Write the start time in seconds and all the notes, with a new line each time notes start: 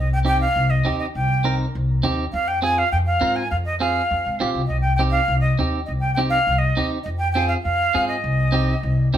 Already playing: C2
0.00 D#5
0.13 G5
0.25 C4 D#4 G4 G5
0.41 F5
0.56 C2
0.70 D#5
0.85 D#2 C4 D#4 G4
0.99 D#5
1.15 C2 G5
1.44 C4 D#4 A#4
1.75 C2
2.03 C4 D#4 G4
2.33 F2 F5
2.48 G5
2.62 C4 F4 G#4 G#5
2.78 F5
2.92 F2 G5
3.06 F5
3.21 G#2 C4 F4 A#4
3.36 G#5
3.51 F2 F5
3.65 D#5
3.79 C4 F4 G#4 F5
4.11 F2
4.26 G#1
4.40 A#1 C4 F4 G4
4.55 C2
4.67 C2 D#5
4.81 G5
4.96 C4 D#4 G5
5.00 G4
5.11 F5
5.28 C2
5.40 D#5
5.59 D#2 C4 D#4 G4
5.86 C2 D#5
6.00 G5
6.14 C4 D#4 G5
6.19 G4
6.30 F5
6.47 C2
6.58 D#5
6.76 D#2 C4 D#4 G4
7.03 F2 D#5
7.18 G5
7.32 C4 G5
7.36 F4 G#4
7.48 F5
7.63 F2 F5
7.94 G#2 C4 F4 G#4
8.08 D#5
8.24 C2
8.52 C4 D#4 G4
8.83 C2
9.14 D#2 C4 D#4